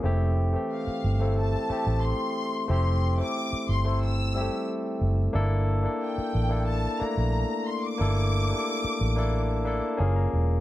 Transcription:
<<
  \new Staff \with { instrumentName = "Violin section" } { \time 4/4 \key g \dorian \tempo 4 = 90 r4 f''4 a''4 c'''4 | c'''8. d'''8. c'''8 e'''4 r4 | r4 g''4 a''8 bes''4 c'''16 d'''16~ | d'''2~ d'''8. r4 r16 | }
  \new Staff \with { instrumentName = "Tine electric piano" } { \time 4/4 \key g \dorian << { r1 | r1 | r1 | r2 r8 e''8 gis''16 ais''8. | } \\ { <a c' e' g'>8 r16 <e a c' g'>8. r16 <a c' e' a'>8 r16 <a c' e' g'>4~ <a c' e' g'>16 r16 | <a c' e' g'>8 r16 <a c' e' a'>8. r16 <a c' e' a'>8 r16 <g a c' e' g'>4~ <g a c' e' g'>16 r16 | <bes d' e' a'>8 r16 <bes d' e' a'>8. r16 <bes d' e' a'>8 r16 <a bes d' e'>4~ <a bes d' e'>16 r16 | <bes d' e' a'>8 r16 <bes d' e' g' a'>8. r16 <bes d' e' a'>8 r16 <bes d' e' a'>8 <ais cis' eis' gis'>8. r16 | } >> }
  \new Staff \with { instrumentName = "Fingered electric bass" } { \clef bass \time 4/4 \key g \dorian f,,4 r8 g,,4 r16 a,,8 r8. | f,,4 r8 g,,4~ g,,16 r8. fis,,8 | g,,4 r8 a,,4 r16 bes,,8 r8. | g,,4 r8 a,,4~ a,,16 r16 fis,,8 e,,8 | }
>>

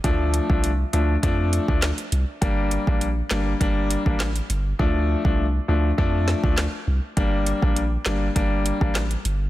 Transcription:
<<
  \new Staff \with { instrumentName = "Grand piano" } { \time 4/4 \key g \minor \tempo 4 = 101 <f a d'>8. <f a d'>16 r8 <f a d'>16 r16 <f a d'>8. <f a d'>16 r4 | <g bes d'>8. <g bes d'>16 r8 <g bes d'>16 r16 <g bes d'>8. <g bes d'>16 r4 | <f a d'>8. <f a d'>16 r8 <f a d'>16 r16 <f a d'>8. <f a d'>16 r4 | <g bes d'>8. <g bes d'>16 r8 <g bes d'>16 r16 <g bes d'>8. <g bes d'>16 r4 | }
  \new Staff \with { instrumentName = "Sub bass" } { \clef bass \time 4/4 \key g \minor d,8. c,8. d,8 f,8. d,8 r16 c,16 r16 | g,,8. bes,,8. g,,8 g,,8. a,,8. g,,8 | d,8. c,8. d,8 f,8. d,8 r16 c,16 r16 | g,,8. bes,,8. g,,8 g,,8. a,,8. g,,8 | }
  \new DrumStaff \with { instrumentName = "Drums" } \drummode { \time 4/4 <hh bd>8 hh16 bd16 hh8 hh8 <hh bd>8 hh16 bd16 <hc hh sn>16 hh16 hh8 | <hh bd>8 hh16 bd16 hh8 <hc hh sn>8 <hh bd>8 hh16 bd16 <hc hh sn>16 hh16 hh8 | bd8. bd16 r4 bd8 sn16 bd16 <hc sn>4 | <hh bd>8 hh16 bd16 hh8 <hc hh sn>8 <hh bd>8 hh16 bd16 <hc hh sn>16 hh16 hh8 | }
>>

